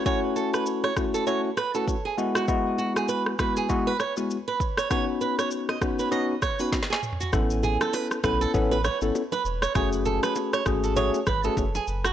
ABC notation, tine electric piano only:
X:1
M:4/4
L:1/16
Q:"Swing 16ths" 1/4=99
K:Alyd
V:1 name="Tine electric piano"
[A,CEF]6 [A,CEF]2 [A,CEF] z2 [A,CEF] z2 [G,B,EF]2 | [G,B,EF]6 [G,B,EF]2 [G,B,EF] z2 [G,B,EF] z4 | [B,CDF]6 [B,CDF]2 [B,CDF] z2 [B,CDF] z4 | [B,CEA]6 [B,CEA]2 [B,CEA] z2 [B,CEA] z4 |
[A,CFG]6 [A,CFG]2 [A,CFG] z2 [A,CFG] z4 |]